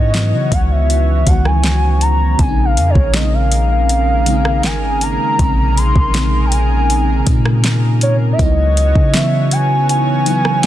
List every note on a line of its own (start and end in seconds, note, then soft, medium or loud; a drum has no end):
0.00 0.34 G#2 loud
0.00 0.14 F#3 medium
0.00 2.35 F#3 medium
0.00 0.16 B3 medium
0.00 2.35 B3 medium
0.00 2.35 C#4 medium
0.00 2.41 D#4 medium
0.00 0.18 E4 medium
0.00 2.35 F#4 medium
0.00 2.35 C#5 medium
0.00 0.54 D#5 loud
0.13 1.06 E3 medium
0.13 1.07 F#3 medium
0.13 1.07 B3 medium
0.13 snare loud
0.13 closed hi-hat medium
0.18 1.08 E4 medium
0.33 0.51 C#3 loud
0.52 1.24 C#2 loud
0.52 0.64 F#5 medium
0.52 kick loud
0.52 closed hi-hat medium
0.64 0.73 F#5 medium
0.71 1.29 E5 loud
0.90 closed hi-hat medium
1.26 2.35 C#2 loud
1.26 2.18 D#3 medium
1.26 2.19 F#3 medium
1.26 2.20 B3 medium
1.26 1.47 F#5 loud
1.26 kick medium
1.26 closed hi-hat medium
1.30 2.21 F#4 medium
1.45 2.01 G#5 loud
1.45 cross-stick medium
1.64 snare loud
1.64 closed hi-hat medium
2.01 2.41 A#5 loud
2.01 closed hi-hat medium
2.38 2.78 A#1 loud
2.38 3.00 C#3 medium
2.38 8.35 C#3 medium
2.38 8.35 D#3 medium
2.38 3.01 G#3 medium
2.38 8.35 A#3 medium
2.38 3.02 C4 medium
2.38 8.35 G#4 medium
2.38 8.35 A#4 medium
2.38 2.67 G#5 loud
2.38 kick loud
2.38 closed hi-hat medium
2.42 2.47 D4 medium
2.49 3.05 D#4 medium
2.65 2.91 F5 loud
2.77 2.95 F2 loud
2.77 closed hi-hat medium
2.90 3.16 C#5 medium
2.95 4.66 A#1 loud
2.95 kick loud
3.13 4.06 C#3 medium
3.13 4.07 G#3 medium
3.13 4.07 C4 medium
3.13 3.35 D#5 loud
3.13 snare loud
3.13 closed hi-hat medium
3.17 3.22 C#4 medium
3.24 4.11 D#4 medium
3.34 3.71 F5 loud
3.52 closed hi-hat medium
3.71 4.67 F5 loud
3.89 closed hi-hat medium
4.26 5.18 C#3 medium
4.26 5.19 G#3 medium
4.26 5.20 C4 medium
4.26 closed hi-hat medium
4.30 5.21 D#4 medium
4.45 cross-stick medium
4.63 5.18 G#1 loud
4.63 5.04 G#5 loud
4.63 snare loud
4.63 closed hi-hat medium
5.01 5.79 A#5 loud
5.01 closed hi-hat medium
5.38 5.93 A#1 loud
5.38 5.45 C3 medium
5.38 6.01 G#3 medium
5.38 6.02 C4 medium
5.38 kick loud
5.38 closed hi-hat medium
5.42 6.03 C#3 medium
5.42 6.02 D#4 medium
5.77 6.47 C6 loud
5.77 closed hi-hat medium
5.96 7.23 A#1 loud
5.96 kick loud
6.13 6.20 C3 medium
6.13 7.07 G#3 medium
6.13 7.07 C4 medium
6.13 snare loud
6.13 closed hi-hat medium
6.18 7.09 C#3 medium
6.18 7.08 D#4 medium
6.46 6.54 G5 medium
6.52 7.27 G#5 loud
6.52 closed hi-hat medium
6.90 closed hi-hat medium
7.25 8.35 A#2 loud
7.25 7.33 C3 medium
7.25 8.19 G#3 medium
7.25 8.20 C4 medium
7.25 kick medium
7.25 closed hi-hat medium
7.30 8.22 C#3 medium
7.30 8.21 D#4 medium
7.45 cross-stick loud
7.64 snare loud
7.64 closed hi-hat medium
8.01 8.16 C#5 medium
8.01 closed hi-hat medium
8.33 8.42 E5 medium
8.38 8.93 C#2 loud
8.38 10.66 F#3 medium
8.38 9.01 F#3 medium
8.38 10.66 B3 medium
8.38 9.02 B3 medium
8.38 10.66 C#4 medium
8.38 9.00 D#4 medium
8.38 10.66 F#4 medium
8.38 10.66 C#5 medium
8.38 9.16 D#5 loud
8.38 kick loud
8.38 closed hi-hat medium
8.43 9.02 E4 medium
8.77 closed hi-hat medium
8.95 10.66 C#3 loud
8.95 kick loud
9.13 10.06 E3 medium
9.13 10.07 F#3 medium
9.13 10.07 B3 medium
9.13 9.52 E5 loud
9.13 snare loud
9.13 closed hi-hat medium
9.18 10.08 E4 medium
9.51 9.87 G#5 loud
9.51 closed hi-hat medium
9.89 10.66 G#5 loud
9.89 closed hi-hat medium
10.25 10.66 F#3 medium
10.25 10.66 B3 medium
10.25 10.66 D#4 medium
10.25 closed hi-hat medium
10.30 10.66 E4 medium
10.45 cross-stick medium
10.63 closed hi-hat medium